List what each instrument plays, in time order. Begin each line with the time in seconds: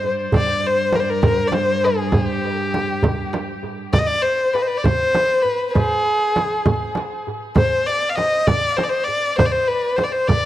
Already playing: cello G2
0.32 cello G2, violin D5, darbuka dum, frame drum
0.65 violin C5, darbuka ka
0.93 violin A#4, darbuka tek, frame drum
1.00 violin C5
1.10 violin A#4
1.23 violin A#4, frame drum, darbuka dum
1.47 violin D5
1.52 violin C5, darbuka tek, frame drum
1.84 violin G#4
2.12 violin G4, frame drum, darbuka dum
2.44 darbuka ka
2.74 darbuka tek, frame drum
3.03 darbuka dum, frame drum
3.33 darbuka tek, frame drum
3.93 violin D5, frame drum, darbuka dum
3.99 violin D#5
4.07 violin D5
4.22 violin C5
4.53 violin B4, darbuka tek
4.62 violin C5
4.67 violin B4
4.77 violin D5
4.84 violin C5, darbuka dum, frame drum
5.15 darbuka tek, frame drum
5.42 violin B4
5.70 violin G#4 B4
5.75 frame drum, darbuka dum
6.36 darbuka tek, frame drum
6.66 frame drum, darbuka dum
6.95 darbuka tek, frame drum
7.56 violin C5, frame drum, darbuka dum
7.86 violin D5
8.10 violin F5
8.15 violin D#5, darbuka tek, frame drum
8.47 violin D5, darbuka dum, frame drum
8.77 violin C5, darbuka tek, frame drum
8.84 violin D5
8.90 violin C5
9.04 violin D5
9.38 violin C5, darbuka dum, frame drum
9.46 violin D5
9.52 violin C5
9.67 violin B4, darbuka ka
9.97 violin C5, darbuka tek, frame drum
10.04 violin D5
10.12 violin C5
10.28 violin D5, darbuka dum, frame drum